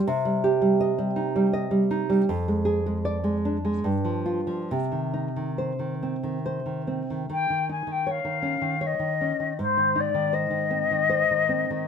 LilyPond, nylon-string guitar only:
\new Staff \with { instrumentName = "Nylon-string guitar" } { \clef bass \time 3/4 \key c \minor \tempo 4 = 78 c16 g16 g'16 g16 ees''16 g16 ees'16 g16 ees''16 g16 ees'16 g16 | f,16 aes16 aes'16 aes16 d''16 aes16 d'16 aes16 g,16 f16 f'16 f16 | c16 ees16 ees'16 ees16 c''16 ees16 c'16 ees16 c''16 ees16 c'16 ees16 | ees16 ees16 ees'16 ees16 des''16 ees16 des'16 ees16 des''16 ees16 des'16 ees16 |
aes,16 ees16 ees'16 ees16 c''16 ees16 c'16 ees16 c''16 ees16 c'16 ees16 | }